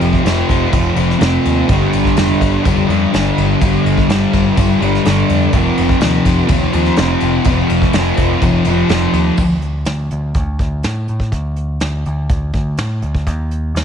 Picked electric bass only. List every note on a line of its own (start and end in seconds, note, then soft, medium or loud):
0.01 0.17 F1 medium
0.25 0.41 F1 medium
0.50 0.65 F1 medium
0.73 0.89 F1 medium
0.96 1.12 F1 medium
1.21 1.37 F1 medium
1.46 1.61 D#2 medium
1.69 1.85 G1 medium
1.94 2.09 G1 medium
2.17 2.33 F1 medium
2.41 2.57 G1 medium
2.66 2.82 F1 medium
2.89 3.05 F2 medium
3.14 3.30 G1 loud
3.38 3.54 G1 medium
3.61 3.77 G1 medium
3.85 4.01 G1 medium
4.08 4.25 G1 medium
4.34 4.50 G1 medium
4.57 4.73 G1 loud
4.81 4.97 G1 medium
5.06 5.22 G1 loud
5.30 5.46 F2 medium
5.53 5.69 F1 medium
5.78 5.94 F1 medium
6.02 6.18 D#2 medium
6.25 6.41 F1 medium
6.49 6.65 D#2 loud
6.74 6.90 D#2 medium
6.99 7.14 F1 loud
7.22 7.38 F1 medium
7.45 7.61 F1 loud
7.70 7.86 F1 medium
7.94 8.10 F1 medium
8.18 8.34 F1 medium
8.42 8.58 F1 medium
8.66 8.82 F1 medium
8.89 9.06 F1 medium
9.13 9.30 D#2 medium
9.38 9.84 D2 medium
9.86 10.10 D2 medium
10.12 10.34 D2 medium
10.35 10.58 D2 medium
10.59 10.83 D2 medium
10.85 11.07 A2 medium
11.09 11.31 A2 medium
11.32 11.78 D2 medium
11.81 12.04 D2 medium
12.06 12.29 D2 medium
12.30 12.53 D2 medium
12.53 12.77 D2 medium
12.78 13.01 A2 medium
13.02 13.27 D2 medium
13.27 13.73 D#2 medium
13.75 13.85 D#2 medium